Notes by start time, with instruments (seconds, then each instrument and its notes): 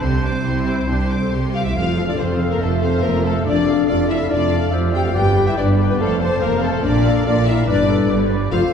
0.01 double bass section C2, cello section C3, viola section C4, violin section G4 C6, oboe C5
0.24 viola section D4, violin section C5 D6
0.45 double bass section C2, cello section C3, viola section E4, violin section G4 C6
0.68 violin section C5 D6
0.88 double bass section C2, cello section C3, viola section D4, violin section G4 C6
1.10 violin section C5 D6
1.23 viola section A4
1.32 double bass section C2, cello section C3, viola section G4, violin section G4 C6
1.53 french horn section F4, violin section C5 F5 D6, flute F5
1.65 french horn section E4, violin section E5, flute E5
1.76 double bass section F1, cello section F2, french horn section F4, viola section F4 C5, clarinet A4, violin section F5, oboe F5, flute F5
1.98 viola section A4 F5
2.08 french horn section D4, flute D5, violin section D5
2.17 double bass section F1, cello section F2, french horn section C4, viola section F4 C5, violin section C5, flute C5
2.41 viola section A4 F5
2.50 french horn section A#3, violin section A#4, flute A#4
2.60 double bass section F1, cello section F2, french horn section A3, viola section F4 C5, violin section A4, flute A4, oboe E5
2.82 french horn section C4, viola section A4 F5, violin section C5, flute C5
3.02 double bass section F1, cello section F2, french horn section A#3, viola section F4 C5, violin section A#4, flute A#4, clarinet C5
3.24 french horn section A3, violin section A4, flute A4, viola section A4 F5
3.45 double bass section F1, cello section F2, french horn section D4, viola section F4 D5, clarinet A4, violin section D5, flute D5, oboe D5
3.66 clarinet A4, viola section A4 F5
3.87 double bass section F1, cello section F2, french horn section D4, viola section F4 D5, violin section D5, flute D5, oboe F5
4.09 french horn section E4, viola section A4 F5, flute E5, violin section E5
4.29 double bass section F1, cello section F2, french horn section D4, viola section F4 D5, clarinet D5, flute D5, violin section D5
4.52 viola section A4 F5
4.71 double bass section F1, cello section F2, viola section F4 D5, clarinet C5, oboe E5
4.94 french horn section G4, viola section A4 F5, flute G5, violin section G5
5.04 french horn section F4, violin section F5, flute F5
5.14 double bass section G1, cello section G2, french horn section G4, viola section G4 D5, clarinet B4, oboe D5, violin section G5, flute G5
5.37 viola section B4 G5
5.46 french horn section E4, violin section E5, flute E5
5.57 double bass section G1, cello section G2, french horn section D4, viola section G4 D5, clarinet B4, flute D5, violin section D5, oboe D5
5.80 viola section B4 G5
5.89 french horn section B3, flute B4, violin section B4
5.99 double bass section F1, cello section F2, french horn section A3, violin section A4, flute A4, viola section A4 F5, clarinet C5
6.21 french horn section C4, flute C5, violin section C5, viola section C5 A5
6.41 double bass section F1, cello section F2, french horn section A#3, viola section A4 F5, violin section A#4, flute A#4, clarinet C5, oboe F5
6.61 french horn section A3, violin section A4, flute A4, viola section C5 A5
6.84 double bass section A#1, cello section A#2, french horn section D4, viola section F4 D5, clarinet A#4, flute D5, violin section D5, oboe F5
7.05 clarinet A4, viola section A#4 F5
7.26 double bass section A#1, cello section A#2, french horn section D4, viola section F4 D5, clarinet A#4, violin section D5, flute D5
7.47 french horn section E4, viola section A#4 F5, violin section E5, flute E5
7.68 double bass section G1, cello section G2, french horn section D4, clarinet B4, viola section B4 D5, oboe D5, flute D5, violin section D5
7.89 clarinet A4, viola section B4 D5
8.10 double bass section G1, cello section G2, clarinet G4, viola section B4 D5, oboe D5
8.31 viola section B4 D5
8.52 double bass section F1, cello section F2, french horn section F4, clarinet A4, viola section A4 C5, oboe C5, violin section F5, flute F5